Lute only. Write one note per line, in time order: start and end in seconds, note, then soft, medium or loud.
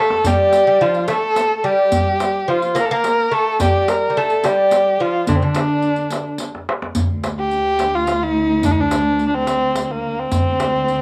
0.00 0.25 A3 medium
0.26 0.66 G3 medium
0.67 0.81 G3 medium
0.81 1.10 F3 medium
1.08 1.60 A3 medium
1.64 2.48 G3 medium
2.48 2.77 F3 medium
2.75 2.90 A#3 medium
2.91 3.31 A#3 medium
3.31 3.60 A3 medium
3.60 4.09 G3 medium
4.10 4.16 G3 soft
4.17 4.45 A3 medium
4.45 5.00 G3 medium
5.00 5.29 F3 medium
5.28 5.41 D3 medium
5.42 6.36 D3 medium